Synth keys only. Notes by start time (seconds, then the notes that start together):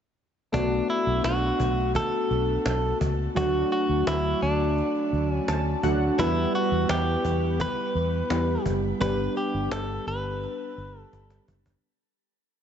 0.52 A3 B3 D4 F#4
3.35 F#3 A3 D4 F#4
5.48 A5
5.83 F#3 A3 D4 F#4 F#5
6.18 G3 B3 E4 B4
8.30 G3 B3 E4 G4
9.00 G3 B3 D4 G4